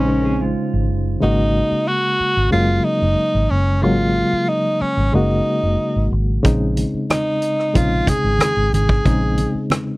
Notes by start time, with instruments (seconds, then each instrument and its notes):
Already playing: fingered electric bass A#1, reed electric piano C#3 G#3 C#4 C5, tenor saxophone C#4
0.00 reed electric piano D#4
0.08 clean electric guitar C#4 A#4
0.25 clean electric guitar C4 G#4
0.41 clean electric guitar G#3 F4
0.74 fingered electric bass G#1
0.89 fingered electric bass F#1
1.21 fingered electric bass G#1, reed electric piano C#3 G#3 A#3 F#4, tenor saxophone D#4
1.72 muted fingered electric bass stroke
1.88 tenor saxophone F#4
2.20 muted fingered electric bass stroke
2.37 fingered electric bass G#1
2.51 fingered electric bass F#1, reed electric piano C#3 F#3 G#3 A#3, tenor saxophone F4
2.84 tenor saxophone D#4
3.02 fingered electric bass F#1
3.35 fingered electric bass G#1
3.50 fingered electric bass F#1, tenor saxophone C#4
3.82 fingered electric bass G#1, reed electric piano C#3 F#3 G#3 A#3, tenor saxophone F4
4.33 muted fingered electric bass stroke
4.49 tenor saxophone D#4
4.81 tenor saxophone C#4, muted fingered electric bass stroke
4.97 fingered electric bass G#1
5.13 fingered electric bass F#1, reed electric piano C#3 G#3 A#3 F#4, tenor saxophone D#4
5.63 fingered electric bass F#1
5.96 fingered electric bass G#1
6.12 fingered electric bass G#1
6.43 fingered electric bass A#1, reed electric piano C#3 G#3 C4 D#4, kick, closed hi-hat, muted conga
6.77 closed hi-hat, muted conga
6.94 muted fingered electric bass stroke
7.10 tenor saxophone D#4, cross-stick, closed hi-hat, high conga
7.42 closed hi-hat
7.59 cross-stick
7.73 fingered electric bass A#1, reed electric piano C3 G#3 C4 D#4, tenor saxophone F4, kick, closed hi-hat, muted conga
7.80 reed electric piano C#3
8.07 tenor saxophone G#4, kick, closed hi-hat, muted conga, low conga
8.24 fingered electric bass G#1
8.39 cross-stick, closed hi-hat, high conga
8.57 fingered electric bass G#1
8.73 fingered electric bass G#1, tenor saxophone G#4, closed hi-hat, high conga
8.89 kick
9.05 fingered electric bass A#1, reed electric piano C#3 G#3 C4 D#4, kick, closed hi-hat, muted conga
9.37 closed hi-hat, muted conga
9.55 muted fingered electric bass stroke
9.70 cross-stick, closed hi-hat, high conga